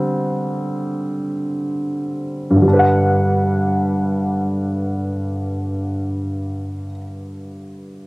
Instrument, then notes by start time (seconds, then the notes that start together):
grand piano
Already playing: D3 G3 C4
2.51 G2
2.56 D3
2.62 G3
2.68 D4
2.73 B4
2.79 F#5